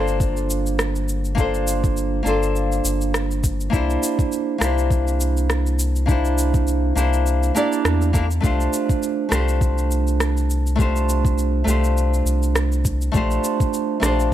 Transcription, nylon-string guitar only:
0.00 1.33 A#3 medium
0.00 1.34 D4 medium
0.00 1.35 F4 medium
0.00 1.35 A4 medium
0.00 1.36 C5 medium
1.35 2.21 A#3 medium
1.35 2.22 D4 medium
1.35 2.23 F4 medium
1.39 2.24 A4 medium
1.39 2.24 C5 medium
2.23 3.68 A#3 medium
2.23 3.69 D4 medium
2.23 3.70 F4 medium
2.27 3.70 A4 medium
2.27 3.71 C5 medium
3.70 4.57 A#3 medium
3.70 4.57 D4 medium
3.70 4.58 E4 medium
3.74 4.59 G4 medium
3.74 4.59 C5 medium
4.58 6.04 A#3 medium
4.58 6.04 D4 medium
4.58 6.05 E4 medium
4.63 6.06 G4 medium
4.63 6.07 C5 medium
6.06 6.92 A#3 medium
6.06 6.93 D4 medium
6.06 6.94 E4 medium
6.10 6.94 G4 medium
6.10 6.95 C5 medium
6.95 7.52 A#3 medium
6.95 7.53 D4 medium
6.95 7.53 E4 medium
6.95 7.53 G4 medium
6.95 7.54 C5 medium
7.55 8.11 A#3 medium
7.55 8.11 D4 medium
7.55 8.11 E4 medium
7.55 8.12 G4 medium
7.55 8.12 D5 medium
8.13 8.24 A#3 medium
8.13 8.25 D4 medium
8.13 8.25 E4 medium
8.13 8.26 G4 medium
8.13 8.26 A#4 medium
8.41 9.27 A3 medium
8.41 9.28 D4 medium
8.41 9.29 F4 medium
8.45 9.29 G4 medium
8.45 9.30 C5 medium
9.29 10.74 A3 medium
9.29 10.75 D4 medium
9.29 10.76 F4 medium
9.33 10.76 G4 medium
9.33 10.77 C5 medium
10.76 11.62 A3 medium
10.76 11.63 D4 medium
10.76 11.64 F4 medium
10.80 11.64 G4 medium
10.80 11.65 C5 medium
11.64 13.10 A3 medium
11.64 13.10 D4 medium
11.64 13.11 F4 medium
11.68 13.12 G4 medium
11.68 13.12 C5 medium
13.12 13.98 A3 medium
13.12 13.99 D4 medium
13.12 13.99 F4 medium
13.16 14.00 G4 medium
13.16 14.01 C5 medium
14.00 14.34 A3 medium
14.00 14.34 D4 medium
14.00 14.34 F4 medium
14.04 14.34 G4 medium
14.04 14.34 C5 medium

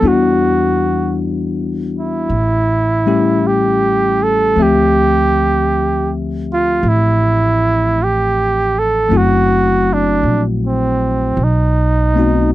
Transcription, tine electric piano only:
0.01 2.29 G3 soft
0.01 2.29 B3 soft
0.01 2.30 D4 soft
0.01 2.31 E4 soft
0.06 2.31 F#4 medium
3.06 4.56 G3 soft
3.06 4.56 A3 soft
3.06 4.57 C#4 soft
3.06 4.57 E4 soft
3.06 4.57 G4 medium
4.56 9.11 F3 soft
4.56 9.09 A3 soft
4.56 9.11 C4 soft
4.56 9.13 E5 soft
4.61 9.13 G4 medium
9.09 11.38 F#3 soft
9.09 11.38 A3 soft
9.09 11.39 C4 soft
9.09 11.40 E4 soft
9.14 11.40 F#4 soft
12.14 12.54 A3 soft
12.14 12.54 B3 soft
12.14 12.54 C4 soft
12.14 12.54 D#4 soft
12.19 12.54 F#4 soft

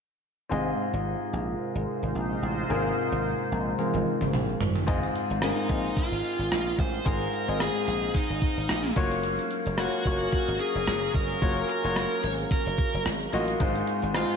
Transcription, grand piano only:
0.49 1.29 G#2 medium
0.49 2.65 C4 medium
0.49 2.65 F4 medium
0.49 2.65 G#4 medium
0.49 2.66 D#5 medium
2.68 3.47 G#2 medium
2.68 2.76 A#3 medium
2.68 3.76 F4 medium
2.68 3.77 G#4 medium
2.68 3.77 A#4 medium
2.75 3.77 C4 medium
3.78 4.60 C4 soft
3.78 4.60 F4 soft
3.78 4.61 G#4 soft
3.78 4.61 A#4 soft
4.87 5.65 G#2 medium
4.87 5.26 C4 medium
4.87 5.26 F4 medium
4.87 5.27 G#4 medium
4.87 5.27 D#5 medium
5.42 5.62 C4 medium
5.42 5.62 F4 medium
5.42 5.62 G#4 medium
5.42 5.62 A#4 medium
5.69 6.45 C4 medium
5.69 6.46 F4 medium
5.69 6.46 G#4 medium
5.69 6.46 D#5 medium
7.05 7.84 G#2 medium
7.05 7.34 C4 medium
7.05 7.34 F4 medium
7.05 7.34 G#4 medium
7.05 7.35 F5 medium
7.48 8.23 C4 medium
7.48 8.23 F4 medium
7.48 8.24 G#4 medium
7.48 8.24 D#5 medium
8.96 9.63 A#3 medium
8.96 9.63 F4 medium
8.96 9.63 F#4 medium
8.96 9.64 C#5 medium
9.78 9.98 A#3 medium
9.78 9.98 F4 medium
9.78 9.98 F#4 medium
9.78 9.98 C#5 medium
10.05 10.82 A#3 medium
10.05 10.82 F4 medium
10.05 10.82 F#4 medium
10.05 10.82 C#5 medium
11.41 11.70 A#3 medium
11.41 11.70 F4 medium
11.41 11.71 F#4 medium
11.41 11.71 C#5 medium
11.83 12.59 A#3 medium
11.83 12.59 F4 medium
11.83 12.59 F#4 medium
11.83 12.60 C#5 medium
13.33 13.53 A#3 medium
13.33 13.53 F4 medium
13.33 13.53 F#4 medium
13.33 13.53 D#5 medium
13.60 14.37 G#2 medium
13.60 13.99 G#3 medium
13.60 13.99 D#4 medium
13.60 13.99 F4 medium
13.60 14.00 C5 medium
14.14 14.34 G#3 medium
14.14 14.35 D#4 medium
14.14 14.35 F4 medium
14.14 14.35 C5 medium

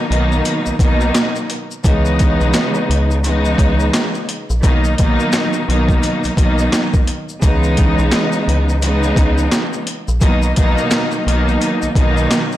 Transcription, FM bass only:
0.11 0.42 B1 loud
0.67 0.72 B1 soft
0.80 1.11 B1 medium
1.85 2.36 C#2 loud
2.41 2.53 B1 medium
2.90 3.55 C#2 loud
3.59 3.90 C#2 medium
4.50 4.62 A#1 medium
4.64 4.95 B1 loud
5.00 5.18 A#1 loud
5.69 6.00 B1 loud
6.25 6.30 B1 soft
6.38 6.69 B1 medium
7.43 7.94 C#2 loud
7.99 8.11 B1 medium
8.48 9.13 C#2 loud
9.17 9.48 C#2 loud
10.08 10.21 A#1 medium
10.22 10.53 B1 loud
10.58 10.76 A#1 loud
11.27 11.58 B1 loud
11.83 11.88 B1 soft
11.96 12.27 B1 loud

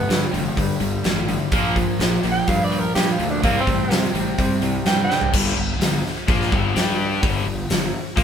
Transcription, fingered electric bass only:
0.10 0.26 G2 medium
0.34 0.49 F1 loud
0.58 0.73 G2 loud
0.81 0.97 G1 loud
1.05 1.37 A1 medium
1.52 1.83 A#1 loud
2.00 2.15 A#1 medium
2.24 2.40 A#1 medium
2.48 2.80 G2 loud
2.96 3.11 G2 loud
3.19 3.45 D2 medium
3.44 3.59 C2 loud
3.67 3.83 A1 medium
3.90 4.06 C3 loud
4.14 4.30 A1 loud
4.38 4.54 C3 loud
4.61 4.77 C2 medium
4.85 5.17 G2 loud
5.34 5.55 G1 loud
5.56 5.79 G1 medium
5.80 6.02 G1 medium
6.28 6.50 A#1 loud
6.53 6.74 G1 loud
6.76 7.20 G2 medium
7.23 7.45 G1 loud
7.46 7.68 G1 medium
7.70 7.92 G1 medium
8.17 8.23 A#1 loud

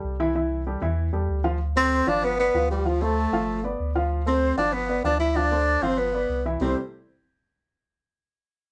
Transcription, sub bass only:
0.04 0.77 C2 medium
0.82 1.11 E2 medium
1.14 1.28 E2 medium
1.29 2.02 D2 loud
2.07 2.51 G1 medium
2.54 3.27 D2 medium
3.32 3.76 G1 medium
3.80 4.52 D2 medium
4.57 5.01 G1 medium
5.04 5.77 D2 medium
5.82 6.26 G1 medium
6.29 6.57 C2 loud
6.60 6.75 C2 loud

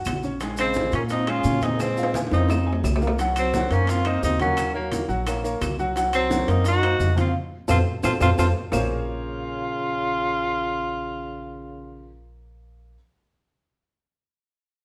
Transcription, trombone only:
0.60 0.92 G#3 medium
0.95 1.02 A#3 medium
1.12 1.29 C4 medium
1.28 1.64 C#4 medium
1.62 1.81 C4 medium
1.79 2.14 G#3 medium
2.33 2.81 C4 medium
3.38 3.73 F#3 medium
3.72 3.90 A#3 medium
3.88 4.06 C4 medium
4.06 4.23 C4 medium
4.23 4.39 C4 medium
4.41 4.73 A#3 medium
4.75 5.07 F#3 medium
6.12 6.51 F#3 medium
6.49 6.66 C4 medium
6.66 7.14 D#4 medium
7.18 7.33 C4 medium
7.69 7.78 C4 medium
8.04 8.12 C4 medium
8.21 8.29 C4 medium
8.36 8.45 C4 medium
8.72 12.25 C#3 medium

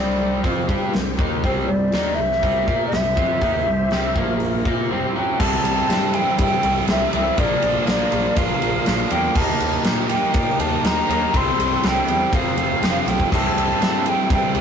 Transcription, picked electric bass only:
0.00 0.40 C2 medium
0.44 0.67 F2 medium
0.69 0.92 G2 medium
0.94 1.17 C2 medium
1.19 1.42 D#2 medium
1.44 1.67 C2 medium
1.68 1.91 C2 medium
1.93 2.16 D#2 medium
2.19 2.42 C2 medium
2.43 2.66 C2 medium
2.67 2.91 A#2 medium
2.92 3.16 C2 medium
3.17 3.40 F2 medium
3.41 3.65 D#2 medium
3.67 3.90 C2 medium
3.91 4.14 C2 medium
4.16 4.62 A#1 medium
4.66 4.89 A#2 medium
5.40 5.55 C2 loud
5.64 5.79 C2 medium
5.89 6.20 G2 medium
6.38 6.54 G2 medium
6.64 6.79 C2 medium
6.88 7.04 C2 medium
7.14 7.29 C2 medium
7.38 7.53 A#1 loud
7.63 7.78 A#1 medium
7.87 8.02 A#1 medium
8.12 8.27 A#1 loud
8.37 8.52 A#1 medium
8.62 8.77 A#1 medium
8.87 9.02 A#1 loud
9.12 9.27 E2 medium
9.35 9.51 D#2 loud
9.61 9.76 D#2 medium
9.85 10.16 A#2 medium
10.35 10.50 A#2 medium
10.60 10.75 D#2 medium
10.84 10.99 D#2 medium
11.09 11.24 D#2 loud
11.34 11.49 C2 medium
11.59 11.74 C2 medium
11.84 11.99 C2 medium
12.08 12.23 E2 medium
12.33 12.48 F1 medium
12.57 12.72 F1 medium
12.82 12.97 F1 medium
13.07 13.22 B1 medium
13.32 13.47 C2 medium
13.56 13.71 C2 medium
13.81 14.11 G2 medium
14.30 14.45 G2 medium
14.55 14.61 C2 loud

